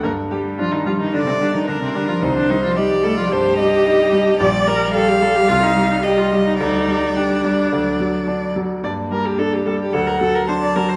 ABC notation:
X:1
M:4/4
L:1/16
Q:1/4=110
K:Gm
V:1 name="Violin"
z8 d4 B4 | c4 d4 c2 e6 | d4 f8 e4 | d12- d2 z2 |
z8 ^f4 a4 |]
V:2 name="Viola"
B2 G2 F E F E D C D E D C D F | E D E F G2 A F G8 | d2 B2 A G A G F E2 E G F G E | E4 D8 z4 |
d2 B G A G A G A B A B c d B c |]
V:3 name="Grand piano" clef=bass
G,,2 G,2 D2 G,2 D,2 G,2 D2 G,2 | C,,2 G,2 E2 G,2 G,,2 G,2 E2 G,2 | B,,,2 G,2 G2 G,2 C,,2 G,2 G2 G,2 | D,,2 G,2 G2 G,2 D,,2 ^F,2 D2 F,2 |
G,,2 G,2 D2 G,2 D,,2 ^F,2 D2 F,2 |]
V:4 name="Cello" clef=bass
B,2 G,2 F, E, F, E, D, C, D, E, D, C, D, F, | E, D, E, F, G,2 A, F, G,8 | G,16- | G,8 ^F,6 z2 |
B,8 ^F,8 |]